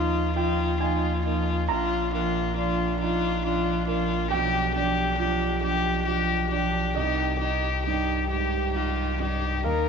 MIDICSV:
0, 0, Header, 1, 6, 480
1, 0, Start_track
1, 0, Tempo, 877193
1, 926, Time_signature, 6, 3, 24, 8
1, 3315, Tempo, 898204
1, 5362, End_track
2, 0, Start_track
2, 0, Title_t, "Violin"
2, 0, Program_c, 0, 40
2, 0, Note_on_c, 0, 65, 45
2, 192, Note_off_c, 0, 65, 0
2, 201, Note_on_c, 0, 65, 46
2, 438, Note_off_c, 0, 65, 0
2, 443, Note_on_c, 0, 65, 40
2, 680, Note_off_c, 0, 65, 0
2, 686, Note_on_c, 0, 65, 38
2, 922, Note_off_c, 0, 65, 0
2, 934, Note_on_c, 0, 65, 49
2, 1165, Note_off_c, 0, 65, 0
2, 1170, Note_on_c, 0, 65, 42
2, 1401, Note_off_c, 0, 65, 0
2, 1406, Note_on_c, 0, 65, 46
2, 1638, Note_off_c, 0, 65, 0
2, 1644, Note_on_c, 0, 65, 48
2, 1877, Note_off_c, 0, 65, 0
2, 1890, Note_on_c, 0, 65, 44
2, 2118, Note_off_c, 0, 65, 0
2, 2122, Note_on_c, 0, 65, 47
2, 2356, Note_off_c, 0, 65, 0
2, 2359, Note_on_c, 0, 67, 54
2, 2593, Note_off_c, 0, 67, 0
2, 2600, Note_on_c, 0, 67, 47
2, 2833, Note_off_c, 0, 67, 0
2, 2837, Note_on_c, 0, 67, 45
2, 3071, Note_off_c, 0, 67, 0
2, 3081, Note_on_c, 0, 67, 50
2, 3312, Note_off_c, 0, 67, 0
2, 3315, Note_on_c, 0, 67, 41
2, 3549, Note_off_c, 0, 67, 0
2, 3555, Note_on_c, 0, 67, 39
2, 3791, Note_off_c, 0, 67, 0
2, 3799, Note_on_c, 0, 67, 44
2, 4027, Note_off_c, 0, 67, 0
2, 4030, Note_on_c, 0, 67, 39
2, 4267, Note_off_c, 0, 67, 0
2, 4277, Note_on_c, 0, 67, 37
2, 4510, Note_off_c, 0, 67, 0
2, 4514, Note_on_c, 0, 67, 37
2, 4748, Note_off_c, 0, 67, 0
2, 4751, Note_on_c, 0, 67, 34
2, 4988, Note_off_c, 0, 67, 0
2, 5003, Note_on_c, 0, 67, 33
2, 5235, Note_off_c, 0, 67, 0
2, 5241, Note_on_c, 0, 70, 39
2, 5362, Note_off_c, 0, 70, 0
2, 5362, End_track
3, 0, Start_track
3, 0, Title_t, "Upright piano"
3, 0, Program_c, 1, 0
3, 0, Control_c, 1, 64, 127
3, 0, Note_on_c, 1, 39, 44
3, 0, Note_on_c, 1, 58, 38
3, 0, Note_on_c, 1, 63, 37
3, 0, Note_on_c, 1, 77, 65
3, 101, Note_off_c, 1, 58, 0
3, 175, Note_off_c, 1, 77, 0
3, 199, Note_on_c, 1, 79, 57
3, 202, Note_on_c, 1, 65, 33
3, 344, Note_off_c, 1, 63, 0
3, 425, Note_off_c, 1, 79, 0
3, 441, Note_on_c, 1, 80, 56
3, 443, Note_off_c, 1, 65, 0
3, 450, Note_on_c, 1, 63, 37
3, 691, Note_on_c, 1, 58, 41
3, 834, Note_off_c, 1, 63, 0
3, 904, Note_off_c, 1, 80, 0
3, 906, Note_off_c, 1, 39, 0
3, 922, Note_on_c, 1, 82, 68
3, 927, Note_on_c, 1, 34, 46
3, 929, Note_off_c, 1, 58, 0
3, 937, Control_c, 1, 64, 0
3, 1010, Control_c, 1, 64, 127
3, 1172, Note_on_c, 1, 58, 38
3, 1406, Note_on_c, 1, 62, 44
3, 1550, Note_off_c, 1, 58, 0
3, 1651, Note_on_c, 1, 63, 36
3, 1786, Note_off_c, 1, 62, 0
3, 1885, Note_off_c, 1, 63, 0
3, 1886, Note_on_c, 1, 62, 41
3, 2096, Note_off_c, 1, 82, 0
3, 2121, Note_on_c, 1, 58, 49
3, 2266, Note_off_c, 1, 62, 0
3, 2338, Note_off_c, 1, 34, 0
3, 2356, Note_on_c, 1, 79, 80
3, 2360, Note_off_c, 1, 58, 0
3, 2369, Note_on_c, 1, 35, 54
3, 2370, Control_c, 1, 64, 0
3, 2468, Control_c, 1, 64, 127
3, 2605, Note_on_c, 1, 62, 46
3, 2843, Note_on_c, 1, 65, 47
3, 2984, Note_off_c, 1, 62, 0
3, 3074, Note_on_c, 1, 67, 39
3, 3223, Note_off_c, 1, 65, 0
3, 3315, Note_off_c, 1, 67, 0
3, 3323, Note_on_c, 1, 65, 39
3, 3559, Note_on_c, 1, 62, 43
3, 3702, Note_off_c, 1, 65, 0
3, 3772, Note_off_c, 1, 79, 0
3, 3779, Note_off_c, 1, 35, 0
3, 3792, Note_on_c, 1, 75, 54
3, 3798, Note_off_c, 1, 62, 0
3, 3804, Note_on_c, 1, 36, 43
3, 3806, Control_c, 1, 64, 0
3, 3883, Control_c, 1, 64, 127
3, 4040, Note_on_c, 1, 63, 37
3, 4283, Note_on_c, 1, 43, 34
3, 4421, Note_off_c, 1, 63, 0
3, 4491, Note_off_c, 1, 75, 0
3, 4523, Note_on_c, 1, 44, 29
3, 4661, Note_off_c, 1, 43, 0
3, 4757, Note_off_c, 1, 44, 0
3, 4758, Note_on_c, 1, 63, 31
3, 4993, Note_on_c, 1, 43, 33
3, 5141, Note_off_c, 1, 63, 0
3, 5218, Note_off_c, 1, 36, 0
3, 5232, Note_on_c, 1, 77, 46
3, 5235, Note_off_c, 1, 43, 0
3, 5240, Note_on_c, 1, 39, 38
3, 5244, Control_c, 1, 64, 0
3, 5337, Control_c, 1, 64, 127
3, 5362, Note_off_c, 1, 39, 0
3, 5362, Note_off_c, 1, 77, 0
3, 5362, End_track
4, 0, Start_track
4, 0, Title_t, "Viola"
4, 0, Program_c, 2, 41
4, 0, Note_on_c, 2, 63, 43
4, 191, Note_off_c, 2, 63, 0
4, 193, Note_on_c, 2, 63, 45
4, 431, Note_off_c, 2, 63, 0
4, 434, Note_on_c, 2, 63, 43
4, 676, Note_off_c, 2, 63, 0
4, 680, Note_on_c, 2, 63, 43
4, 916, Note_off_c, 2, 63, 0
4, 919, Note_on_c, 2, 62, 47
4, 1157, Note_off_c, 2, 62, 0
4, 1164, Note_on_c, 2, 62, 46
4, 1398, Note_off_c, 2, 62, 0
4, 1403, Note_on_c, 2, 62, 45
4, 1635, Note_off_c, 2, 62, 0
4, 1638, Note_on_c, 2, 62, 53
4, 1874, Note_off_c, 2, 62, 0
4, 1879, Note_on_c, 2, 62, 49
4, 2115, Note_off_c, 2, 62, 0
4, 2122, Note_on_c, 2, 62, 49
4, 2356, Note_off_c, 2, 62, 0
4, 2359, Note_on_c, 2, 62, 53
4, 2593, Note_off_c, 2, 62, 0
4, 2596, Note_on_c, 2, 62, 48
4, 2831, Note_off_c, 2, 62, 0
4, 2838, Note_on_c, 2, 62, 53
4, 3071, Note_off_c, 2, 62, 0
4, 3078, Note_on_c, 2, 62, 48
4, 3312, Note_off_c, 2, 62, 0
4, 3318, Note_on_c, 2, 62, 47
4, 3550, Note_off_c, 2, 62, 0
4, 3559, Note_on_c, 2, 62, 43
4, 3793, Note_off_c, 2, 62, 0
4, 3798, Note_on_c, 2, 63, 43
4, 4032, Note_off_c, 2, 63, 0
4, 4037, Note_on_c, 2, 63, 41
4, 4271, Note_off_c, 2, 63, 0
4, 4276, Note_on_c, 2, 63, 38
4, 4510, Note_off_c, 2, 63, 0
4, 4516, Note_on_c, 2, 67, 48
4, 4755, Note_on_c, 2, 65, 41
4, 4763, Note_off_c, 2, 67, 0
4, 4997, Note_on_c, 2, 63, 39
4, 5005, Note_off_c, 2, 65, 0
4, 5236, Note_off_c, 2, 63, 0
4, 5240, Note_on_c, 2, 63, 38
4, 5362, Note_off_c, 2, 63, 0
4, 5362, End_track
5, 0, Start_track
5, 0, Title_t, "Cello"
5, 0, Program_c, 3, 42
5, 0, Note_on_c, 3, 53, 43
5, 191, Note_off_c, 3, 53, 0
5, 194, Note_on_c, 3, 53, 44
5, 434, Note_off_c, 3, 53, 0
5, 442, Note_on_c, 3, 53, 37
5, 680, Note_off_c, 3, 53, 0
5, 685, Note_on_c, 3, 53, 38
5, 922, Note_off_c, 3, 53, 0
5, 924, Note_on_c, 3, 53, 47
5, 1160, Note_off_c, 3, 53, 0
5, 1169, Note_on_c, 3, 53, 41
5, 1399, Note_off_c, 3, 53, 0
5, 1402, Note_on_c, 3, 53, 45
5, 1634, Note_off_c, 3, 53, 0
5, 1637, Note_on_c, 3, 53, 51
5, 1874, Note_off_c, 3, 53, 0
5, 1883, Note_on_c, 3, 53, 46
5, 2116, Note_off_c, 3, 53, 0
5, 2123, Note_on_c, 3, 53, 48
5, 2356, Note_off_c, 3, 53, 0
5, 2364, Note_on_c, 3, 53, 51
5, 2596, Note_off_c, 3, 53, 0
5, 2604, Note_on_c, 3, 53, 45
5, 2835, Note_off_c, 3, 53, 0
5, 2838, Note_on_c, 3, 53, 43
5, 3071, Note_off_c, 3, 53, 0
5, 3080, Note_on_c, 3, 53, 47
5, 3314, Note_off_c, 3, 53, 0
5, 3318, Note_on_c, 3, 53, 44
5, 3550, Note_off_c, 3, 53, 0
5, 3558, Note_on_c, 3, 53, 41
5, 3792, Note_off_c, 3, 53, 0
5, 3796, Note_on_c, 3, 51, 42
5, 4031, Note_off_c, 3, 51, 0
5, 4036, Note_on_c, 3, 51, 37
5, 4270, Note_off_c, 3, 51, 0
5, 4276, Note_on_c, 3, 51, 35
5, 4510, Note_off_c, 3, 51, 0
5, 4515, Note_on_c, 3, 51, 36
5, 4749, Note_off_c, 3, 51, 0
5, 4758, Note_on_c, 3, 51, 35
5, 4991, Note_off_c, 3, 51, 0
5, 4997, Note_on_c, 3, 51, 34
5, 5232, Note_off_c, 3, 51, 0
5, 5242, Note_on_c, 3, 51, 38
5, 5362, Note_off_c, 3, 51, 0
5, 5362, End_track
6, 0, Start_track
6, 0, Title_t, "Sub bass"
6, 0, Program_c, 4, 38
6, 0, Note_on_c, 4, 39, 59
6, 928, Note_on_c, 4, 34, 56
6, 937, Note_off_c, 4, 39, 0
6, 2363, Note_on_c, 4, 35, 58
6, 2372, Note_off_c, 4, 34, 0
6, 3794, Note_on_c, 4, 36, 54
6, 3802, Note_off_c, 4, 35, 0
6, 5237, Note_on_c, 4, 39, 55
6, 5245, Note_off_c, 4, 36, 0
6, 5362, Note_off_c, 4, 39, 0
6, 5362, End_track
0, 0, End_of_file